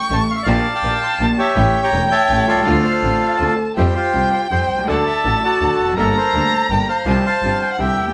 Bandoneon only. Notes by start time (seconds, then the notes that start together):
Already playing: G5 C#6
0.13 A5
0.31 F5
0.35 E5
0.43 D5 F5
0.75 F5 G5 D6
1.04 C6
1.21 A5
1.38 G4 C#5 E5
1.82 C#5 G5 A#5
2.11 C#5 E5 A5
2.47 F4 A4 D5
3.77 G4 C5 E5
3.95 F4 G4 C5
4.33 C5
4.51 C5 G5
4.89 A4 D5 F#5
5.06 A4 E5
5.36 E5
5.43 F#4 A4 D5
5.98 A4 A#4 E5
6.10 D5
6.17 A4 C5
6.71 G5
6.89 C5 F5
7.26 C5 F5 A5
7.62 G5
7.80 G4 E5